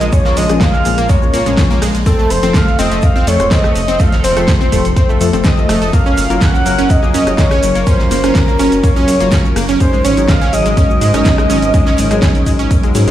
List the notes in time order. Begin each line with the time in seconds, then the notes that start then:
Already playing: C#3 F3 G#3 A#3 F4, impact
0.01 A#1 G#3, closed hi-hat, cabasa
0.12 F3 A#3 C#4 G#4 C#5 C#6, kick, closed hi-hat, cabasa, shaker
0.25 A#3, snare, cabasa
0.27 snare
0.36 A#1 G#3 D#5 D#6, open hi-hat, cabasa, shaker
0.49 A#1 F3 A#3 C#4 G#4, cross-stick, closed hi-hat, cabasa
0.61 A#3 F5 F6, kick, snare, closed hi-hat, cabasa, shaker
0.74 G#3, cabasa
0.85 A#1 F3 A#3 C#4 G#4, open hi-hat, cabasa, shaker
0.98 A#1 A#3, closed hi-hat, cabasa
1.09 G#3 C#5 C#6, kick, closed hi-hat, cabasa, shaker
1.22 F3 A#3 C#4 F4, cabasa
1.34 A#2 A#3, open hi-hat, cabasa, shaker
1.46 A#1 F3 G#3 A#3 C#4 A#4, closed hi-hat, cabasa
1.57 F3 A#3 C#4 G#4, kick, snare, closed hi-hat, cabasa, shaker
1.70 A#3, closed hi-hat, cabasa
1.82 A#1 G#3, cross-stick, open hi-hat, cabasa
1.95 A#1, snare, closed hi-hat, cabasa
2.06 C3 F3 A3 C4 A4 A5, kick, closed hi-hat, cabasa, shaker
2.19 A3, cabasa
2.30 F1 C5 C6, open hi-hat, cabasa, shaker
2.43 F1 F3 A3 C4 A4, closed hi-hat, cabasa
2.54 A3 F5 F6, kick, snare, closed hi-hat, cabasa, shaker
2.67 snare, cabasa
2.79 F1 F3 A3 C4 A4 D#5 D#6, open hi-hat, cabasa, shaker
2.91 F1 A3, closed hi-hat, cabasa
3.02 F5 F6, kick, closed hi-hat, cabasa, shaker
3.16 F3 A3 C4 F4, cabasa
3.27 F2 A3 C#5 C#6, open hi-hat, cabasa, shaker
3.40 F1 F3 A3 C4 C5, cross-stick, closed hi-hat, cabasa
3.51 F3 A3 C4 A4 D#5 D#6, kick, snare, closed hi-hat, cabasa, shaker
3.64 A3, cross-stick, cabasa
3.75 F1, open hi-hat, cabasa, shaker
3.88 F1 C4, closed hi-hat, cabasa
3.99 F3 A3 C4 A4 F5 F6, kick, closed hi-hat, cabasa, shaker
4.12 snare, closed hi-hat, cabasa
4.24 F1 C4 C5 C6, open hi-hat, cabasa, shaker
4.37 F1 F3 A3 C4 A4, cross-stick, closed hi-hat, cabasa
4.48 kick, snare, closed hi-hat, cabasa, shaker
4.61 C4, cabasa
4.72 F1 F3 A3 C4 A4, kick, open hi-hat, cabasa, shaker
4.85 F1, closed hi-hat, cabasa
4.96 C4, kick, closed hi-hat, cabasa
5.09 F3 A3 C4 F4, cabasa
5.20 F2 F3 A3 C4 A4, open hi-hat, cabasa, shaker
5.33 F1 F3 A3 C4 A4, closed hi-hat, cabasa
5.44 C4 D#5 D#6, kick, snare, closed hi-hat, cabasa, shaker
5.57 F3 A3 C4 A4, closed hi-hat, cabasa
5.69 F1 A3, cross-stick, open hi-hat, cabasa
5.81 F1 A4, snare, closed hi-hat, cabasa
5.93 C#3 F#3 A#3 C#4 F4 A#4 F5 F6, kick, closed hi-hat, cabasa, shaker
6.06 C#4, cabasa
6.17 F#1, open hi-hat, cabasa, shaker
6.30 F#1 F#3 A#3 C#4 F4 A#4, closed hi-hat, cabasa
6.41 C#4 F#5 F#6, kick, snare, closed hi-hat, cabasa, shaker
6.55 snare, cabasa
6.66 F#1 F#3 A#3 C#4 F4 A#4, open hi-hat, cabasa, shaker
6.78 F#1 C#4, closed hi-hat, cabasa
6.90 D#5 D#6, kick, closed hi-hat, cabasa, shaker
7.03 F#3 A#3 C#4 F4 G#4, cabasa
7.14 F#2 C#4, open hi-hat, cabasa, shaker
7.27 F#1 F#3 C#4 F4 C#5, cross-stick, closed hi-hat, cabasa
7.38 F#3 A#3 C#4 F4 A#4 C#5 C#6, kick, snare, closed hi-hat, cabasa, shaker
7.51 C#4, cross-stick, cabasa
7.63 F#1, open hi-hat, cabasa, shaker
7.75 F#1 A#3, closed hi-hat, cabasa
7.87 F#3 C#4 F4 A#4 C5 C6, kick, closed hi-hat, cabasa, shaker
7.99 snare, cabasa
8.11 F#1 A#3, open hi-hat, cabasa, shaker
8.24 F#1 F#3 C#4 F4 A#4, cross-stick, closed hi-hat, cabasa
8.35 A#4 A#5, kick, snare, closed hi-hat, cabasa, shaker
8.48 A#3, cabasa
8.59 F#1 F#3 C#4 F4 A#4, open hi-hat, cabasa, shaker
8.72 F#1, closed hi-hat, cabasa
8.84 A#3 C#5 C#6, kick, closed hi-hat, cabasa, shaker
8.96 F#3 C#4 F4 G#4, cabasa
9.08 F#2, open hi-hat, cabasa, shaker
9.20 F#1 F#3 A#3 C#4 F4 C#5, closed hi-hat, cabasa
9.32 F#3 C#4 F4 A#4, kick, snare, closed hi-hat, cabasa, shaker
9.45 closed hi-hat, cabasa
9.56 F#1 A#3, cross-stick, open hi-hat, cabasa
9.69 F#1 C#4, snare, closed hi-hat, cabasa
9.80 F#3 G#3 C#4 D#4 G#4 C5 C6, kick, closed hi-hat, cabasa, shaker
9.93 G#3, cabasa
10.04 G#1 C#4 C#5 C#6, open hi-hat, cabasa, shaker
10.17 G#1 F#3 C#4 D#4 G#4, closed hi-hat, cabasa
10.28 G#3 F5 F6, kick, snare, closed hi-hat, cabasa, shaker
10.41 C#4, snare, cabasa
10.53 G#1 F#3 C#4 D#4 G#4 D#5 D#6, open hi-hat, cabasa, shaker
10.66 G#1 G#3, closed hi-hat, cabasa
10.77 C#4, kick, closed hi-hat, cabasa, shaker
10.90 F#3 C#4 D#4 F#4, cabasa
11.01 G#2 G#3, open hi-hat, cabasa, shaker
11.14 G#1 F#3 C#4 D#4 A#4, cross-stick, closed hi-hat, cabasa
11.25 F#3 C#4 D#4 G#4, kick, snare, closed hi-hat, cabasa, shaker
11.38 G#3, cross-stick, cabasa
11.50 G#1 C#4, open hi-hat, cabasa, shaker
11.62 G#1, closed hi-hat, cabasa
11.74 F#3 G#3 C#4 D#4 G#4, kick, closed hi-hat, cabasa, shaker
11.86 C#4, snare, cabasa
11.97 G#1, open hi-hat, cabasa, shaker
12.11 G#1 F#3 G#3 C#4 D#4 G#4, cross-stick, closed hi-hat, cabasa
12.22 C#4, kick, snare, closed hi-hat, cabasa, shaker
12.35 closed hi-hat, cabasa
12.46 G#1 F#3 G#3 C#4 D#4 G#4, kick, open hi-hat, cabasa, shaker
12.59 G#1 C#4, closed hi-hat, cabasa
12.71 kick, closed hi-hat, cabasa, shaker
12.83 F#3 G#3 C#4 D#4 F#4, closed hi-hat, cabasa
12.95 G#2 F#3 C#4 D#4 G#4, snare, open hi-hat, cabasa, shaker
13.08 G#1 F#3 G#3 C#4 D#4 G#4, closed hi-hat